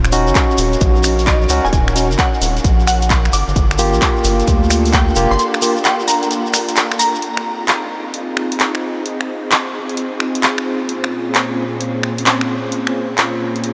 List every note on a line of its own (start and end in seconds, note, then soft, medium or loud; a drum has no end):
0.00 0.29 D#1 loud
0.00 3.29 C#4 medium
0.00 3.30 F#4 medium
0.00 3.30 A#4 medium
0.00 3.30 F5 medium
0.04 finger snap medium
0.04 shekere soft
0.12 1.48 C#4 medium
0.12 1.48 D#4 medium
0.12 1.48 F#4 loud
0.12 open hi-hat loud
0.12 shekere medium
0.27 0.33 F#1 loud
0.27 shekere soft
0.35 kick loud
0.35 clap loud
0.35 closed hi-hat medium
0.35 shekere soft
0.50 shekere soft
0.58 0.76 D#1 loud
0.58 open hi-hat loud
0.58 shekere medium
0.73 closed hi-hat soft
0.73 shekere soft
0.81 1.46 A#1 medium
0.81 kick loud
0.81 closed hi-hat medium
0.81 shekere soft
0.96 shekere soft
1.04 finger snap medium
1.04 open hi-hat loud
1.04 shekere medium
1.19 open hi-hat medium
1.19 shekere soft
1.27 1.62 D#5 medium
1.27 kick loud
1.27 clap loud
1.27 closed hi-hat medium
1.27 shekere soft
1.42 shekere soft
1.49 1.60 C#2 medium
1.49 1.66 C#4 medium
1.49 1.66 D#4 medium
1.49 1.66 F#4 loud
1.49 open hi-hat loud
1.49 shekere loud
1.65 1.70 D#1 medium
1.65 1.70 G#5 medium
1.65 shekere soft
1.73 2.12 D#1 loud
1.73 1.82 G#5 medium
1.73 kick loud
1.73 closed hi-hat medium
1.73 shekere soft
1.88 finger snap medium
1.88 shekere soft
1.96 2.07 C#4 medium
1.96 2.07 D#4 medium
1.96 2.07 F#4 medium
1.96 open hi-hat loud
1.96 shekere medium
2.11 2.16 F#1 loud
2.11 shekere soft
2.19 2.39 F#5 loud
2.19 kick loud
2.19 clap loud
2.19 closed hi-hat medium
2.19 shekere soft
2.34 shekere soft
2.42 2.60 D#1 loud
2.42 open hi-hat loud
2.42 shekere medium
2.57 closed hi-hat soft
2.57 shekere soft
2.64 3.29 A#1 medium
2.64 kick loud
2.64 closed hi-hat medium
2.64 shekere soft
2.80 shekere soft
2.87 3.08 F#5 medium
2.87 finger snap medium
2.87 open hi-hat loud
2.87 shekere loud
3.02 closed hi-hat medium
3.02 shekere soft
3.10 kick loud
3.10 clap loud
3.10 closed hi-hat medium
3.10 shekere medium
3.25 finger snap soft
3.25 shekere soft
3.33 3.44 G1 medium
3.33 7.18 A#3 medium
3.33 7.18 D4 medium
3.33 7.18 F4 medium
3.33 7.19 A4 medium
3.33 3.99 D6 loud
3.33 open hi-hat loud
3.33 shekere medium
3.48 3.54 G1 medium
3.48 shekere soft
3.56 3.95 G1 loud
3.56 kick loud
3.56 closed hi-hat medium
3.56 shekere soft
3.71 finger snap medium
3.71 shekere soft
3.78 5.14 A#3 medium
3.78 5.14 F4 medium
3.78 5.14 G4 loud
3.78 open hi-hat loud
3.78 shekere medium
3.93 3.99 A#1 loud
3.93 shekere soft
4.02 kick loud
4.02 clap loud
4.02 closed hi-hat medium
4.02 shekere medium
4.17 shekere soft
4.24 4.43 G1 loud
4.24 open hi-hat loud
4.24 shekere medium
4.40 closed hi-hat soft
4.40 shekere soft
4.47 5.13 D2 medium
4.47 kick loud
4.47 closed hi-hat medium
4.47 shekere soft
4.64 shekere soft
4.70 finger snap medium
4.70 open hi-hat loud
4.70 shekere medium
4.86 open hi-hat medium
4.86 shekere soft
4.93 5.28 G5 medium
4.93 kick loud
4.93 clap loud
4.93 closed hi-hat medium
4.93 shekere soft
5.08 shekere soft
5.15 5.27 F1 medium
5.15 5.33 A#3 medium
5.15 5.33 F4 medium
5.15 5.33 G4 loud
5.15 open hi-hat loud
5.15 shekere medium
5.31 5.37 G1 medium
5.31 5.36 C6 medium
5.31 shekere soft
5.39 5.49 C6 medium
5.39 closed hi-hat medium
5.39 shekere medium
5.54 finger snap medium
5.54 shekere soft
5.62 5.73 A#3 medium
5.62 5.73 F4 medium
5.62 5.73 G4 medium
5.62 open hi-hat loud
5.62 shekere medium
5.77 shekere soft
5.85 6.05 G5 loud
5.85 clap loud
5.85 closed hi-hat medium
5.85 shekere soft
6.00 shekere soft
6.08 6.28 A#5 medium
6.08 open hi-hat loud
6.08 shekere medium
6.23 closed hi-hat soft
6.23 shekere soft
6.31 closed hi-hat medium
6.31 shekere soft
6.46 shekere soft
6.54 finger snap medium
6.54 open hi-hat loud
6.54 shekere loud
6.68 closed hi-hat medium
6.68 shekere soft
6.76 clap loud
6.76 closed hi-hat medium
6.76 shekere medium
6.92 finger snap soft
6.92 shekere soft
6.99 7.22 A#5 loud
6.99 open hi-hat loud
6.99 shekere medium
7.15 shekere soft
7.22 13.73 C4 medium
7.22 10.62 D#4 medium
7.22 13.73 F4 medium
7.22 13.73 G#4 medium
7.22 closed hi-hat medium
7.37 finger snap medium
7.68 clap loud
7.68 closed hi-hat medium
8.14 closed hi-hat medium
8.37 finger snap medium
8.52 closed hi-hat medium
8.60 clap loud
8.60 closed hi-hat medium
8.75 finger snap soft
9.06 closed hi-hat medium
9.21 finger snap medium
9.52 clap loud
9.52 closed hi-hat medium
9.89 closed hi-hat soft
9.97 closed hi-hat medium
10.20 finger snap medium
10.35 closed hi-hat medium
10.43 clap loud
10.43 closed hi-hat medium
10.58 finger snap medium
10.66 13.73 A#2 medium
10.66 13.73 C#4 medium
10.89 closed hi-hat medium
11.04 finger snap medium
11.35 clap loud
11.35 closed hi-hat medium
11.81 closed hi-hat medium
12.03 finger snap medium
12.18 closed hi-hat medium
12.26 clap loud
12.26 closed hi-hat medium
12.41 finger snap soft
12.72 closed hi-hat medium
12.87 finger snap medium
13.18 clap loud
13.18 closed hi-hat medium
13.56 closed hi-hat soft
13.64 closed hi-hat medium